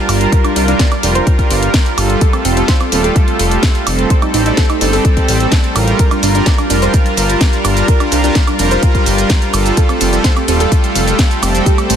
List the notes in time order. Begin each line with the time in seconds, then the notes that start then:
Already playing: G3 D4 F4 A#4 C5 A5
0.09 G1 G3 F4 A#4, open hi-hat, high woodblock
0.21 closed hi-hat
0.32 A#4, kick, closed hi-hat
0.44 D4, closed hi-hat, high woodblock
0.56 C2 G3 D4 F4 A#4, open hi-hat
0.68 G3 D4 F4 A#4, closed hi-hat
0.79 D5, kick, snare, closed hi-hat
0.92 D4, closed hi-hat, high woodblock
1.03 F1 G3 D4 F4 A#4, open hi-hat
1.15 C5, closed hi-hat
1.27 kick, closed hi-hat
1.39 kick, closed hi-hat
1.50 G1 G3 F4 A#4, open hi-hat
1.63 closed hi-hat
1.74 kick, snare, closed hi-hat
1.86 closed hi-hat
1.98 G1 G3 F4 A4, open hi-hat, high woodblock
2.10 closed hi-hat
2.21 A3 F4 G4 A4, kick, closed hi-hat
2.33 C4, closed hi-hat, high woodblock
2.45 F1 G3 C4 F4 A4, open hi-hat
2.57 G3 C4 F4 A4, closed hi-hat
2.68 C5, kick, snare, closed hi-hat
2.81 C4, closed hi-hat, high woodblock
2.92 D#1 G3 C4 F4 A4, open hi-hat
3.04 A4, closed hi-hat
3.16 kick, closed hi-hat
3.28 closed hi-hat
3.39 F1 G3 F4 A4, open hi-hat
3.51 closed hi-hat
3.63 kick, snare, closed hi-hat
3.75 closed hi-hat
3.87 F1 G3 C4 A4, open hi-hat, high woodblock
3.99 closed hi-hat
4.10 A3 C4 G4 C5, kick, closed hi-hat
4.22 D#4, closed hi-hat, high woodblock
4.34 A1 G3 C4 D#4 A4, open hi-hat
4.46 G3 C4 D#4 A4, closed hi-hat
4.57 A4, kick, snare, closed hi-hat
4.70 D#4, closed hi-hat, high woodblock
4.81 G1 G3 C4 D#4 A4, open hi-hat
4.93 A4, open hi-hat
5.05 kick, closed hi-hat
5.17 kick, closed hi-hat
5.28 A1 G3 C4 A4, open hi-hat
5.40 closed hi-hat
5.52 kick, snare, closed hi-hat
5.64 closed hi-hat
5.76 A1 G3 F4 A#4, open hi-hat, high woodblock
5.88 closed hi-hat
5.99 G3 D4 F4 A#4 A5, kick, closed hi-hat, shaker
6.11 D4, closed hi-hat, high woodblock, shaker
6.23 G1 G3 D4 F4 A#4, open hi-hat, shaker
6.35 G3 D4 F4 A#4, closed hi-hat, shaker
6.46 D5, kick, snare, closed hi-hat, shaker
6.58 D4, closed hi-hat, high woodblock, shaker
6.70 F1 G3 D4 F4 A#4, open hi-hat, shaker
6.82 C5, closed hi-hat, shaker
6.94 kick, closed hi-hat, shaker
7.06 closed hi-hat, shaker
7.17 G1 G3 F4 A#4, open hi-hat, shaker
7.29 closed hi-hat, shaker
7.41 kick, snare, closed hi-hat, shaker
7.53 closed hi-hat, shaker
7.65 G1 G3 F4 A#4, open hi-hat, high woodblock, shaker
7.77 closed hi-hat, shaker
7.88 A#4, kick, closed hi-hat, shaker
8.00 D4, closed hi-hat, high woodblock, shaker
8.12 C2 G3 D4 F4 A#4, open hi-hat, shaker
8.24 G3 D4 F4 A#4, closed hi-hat, shaker
8.35 D5, kick, snare, closed hi-hat, shaker
8.47 D4, closed hi-hat, high woodblock, shaker
8.59 F1 G3 D4 F4 A#4, open hi-hat, shaker
8.71 C5, closed hi-hat, shaker
8.83 kick, closed hi-hat, shaker
8.95 kick, closed hi-hat, shaker
9.06 G1 G3 F4 A#4, open hi-hat, shaker
9.18 closed hi-hat, shaker
9.30 kick, snare, closed hi-hat, shaker
9.42 closed hi-hat, shaker
9.54 G1 G3 F4 A4, open hi-hat, high woodblock, shaker
9.66 closed hi-hat, shaker
9.77 A3 G4 A4, kick, closed hi-hat, shaker
9.89 C4, closed hi-hat, high woodblock, shaker
10.01 F1 G3 C4 F4 A4, open hi-hat, shaker
10.13 G3 C4 F4 A4, closed hi-hat, shaker
10.24 C5, kick, snare, closed hi-hat, shaker
10.37 C4, closed hi-hat, high woodblock, shaker
10.48 D#1 G3 C4 F4 A4, open hi-hat, shaker
10.60 A4, closed hi-hat, shaker
10.72 kick, closed hi-hat, shaker
10.84 closed hi-hat, shaker
10.95 F1 G3 F4 A4, open hi-hat, shaker
11.07 closed hi-hat, shaker
11.19 kick, snare, closed hi-hat, shaker
11.31 closed hi-hat, shaker
11.43 F1 G3 C4 A4, open hi-hat, high woodblock, shaker
11.55 closed hi-hat, shaker
11.66 C4 G4, kick, closed hi-hat, shaker
11.78 A3, closed hi-hat, high woodblock, shaker
11.90 A1 G3 A3 C4 A4, open hi-hat, shaker